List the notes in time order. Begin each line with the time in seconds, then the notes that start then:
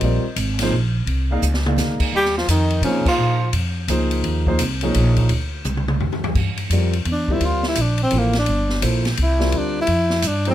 Already playing: D#5
0.01 A#1 G3 C4 F4 A#4 D5, ride
0.24 muted upright bass stroke
0.36 G#1, hi-hat pedal, ride
0.59 F3 A#3 D#4 G#4, snare, ride
0.63 C5
0.72 A#1
1.06 C2, ride
1.31 A#3 D#4 G#4 D5 F5
1.42 C#2, hi-hat pedal
1.54 snare
1.66 A#3 D#4 G#4 D5 F5, mid tom
1.76 D2, snare, hi-hat pedal
1.99 muted upright bass stroke, kick, crash
2.12 D#2 G3
2.16 G4
2.25 snare
2.38 F3 F4, snare
2.48 F2 D#3 D#4, hi-hat pedal, ride
2.70 ride
2.81 C3 C#3 F3 A#3 C#4 D#4 G#4 C5, ride
3.06 F3 F4, muted upright bass stroke, kick, crash
3.18 A#2
3.53 F2, ride
3.88 C#2 F3 A#3 D#4 G#4 C5, hi-hat pedal, ride
4.11 ride
4.24 D#2, ride
4.47 F3 A#3 D#4 G#4 C5, kick
4.59 C2, hi-hat pedal, ride
4.81 F3 A#3 D#4 G#4 C#5, ride
4.94 A#1, ride
5.16 kick, ride
5.29 D2, ride
5.64 C2, hi-hat pedal, mid tom
5.77 mid tom
5.88 mid tom
6.00 D#2, floor tom
6.12 floor tom
6.24 floor tom
6.35 G2, kick, crash
6.57 ride
6.70 F2 G3 C4 F4 A#4 D5, hi-hat pedal, ride
6.93 ride
7.05 E2, ride
7.12 D4
7.28 G3 C4 F4 A#4 D5, kick
7.32 E4
7.40 D2, ride
7.46 F4
7.63 snare
7.68 E4
7.75 A#1, hi-hat pedal, ride
7.81 D4
7.98 ride
8.03 C4
8.11 A1 F3 A#3 E4 A4 C5, ride
8.18 A#3
8.33 snare, ride
8.39 D4
8.46 G1, ride
8.69 snare
8.82 A#1 F3 A#3 E4 A4 C5, hi-hat pedal, ride
9.05 snare, ride
9.17 C2, ride
9.23 E4
9.39 G3 C4 F4 A#4 D5, snare
9.52 D2, ride
9.58 D4
9.81 E4
9.87 F2, ride
10.10 snare
10.22 G2, hi-hat pedal, ride
10.27 D4
10.45 F3 A#3 D#4 G#4 C5, ride
10.50 C4